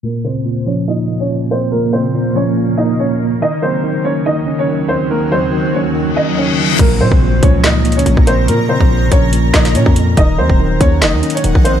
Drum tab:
CC |------------------------------------------------|------------------------------------------------|------------------------------------------------|------------------------------------------------|
HH |------------------------------------------------|------------------------------------------------|------------------------------------------------|------------------------------------------------|
CP |------------------------------------------------|------------------------------------------------|------------------------------------------------|------------------------------------------------|
SD |------------------------------------------------|------------------------------------------------|------------------------------------------------|------------------------------------------------|
BD |------------------------------------------------|------------------------------------------------|------------------------------------------------|------------------------------------------------|

CC |x-----------------------------------------------|------------------------------------------------|------------------------------------------------|
HH |x-----------------x-----x-----x-x-x-x-----x-----|x-----------------x-----x-----x--x--x-----x-----|x-----------------x-----x-----x-x-x-x-----x-----|
CP |------------------------x-----------------------|------------------------------x-----------------|------------------------x-----------------------|
SD |------------------------o-----------------------|------------------------------o--o--------------|------------------------o-----------------------|
BD |o--------o--------o--------------------o--------|---------o--------o-----------o--------o--------|o--------o--------o--------------------o--------|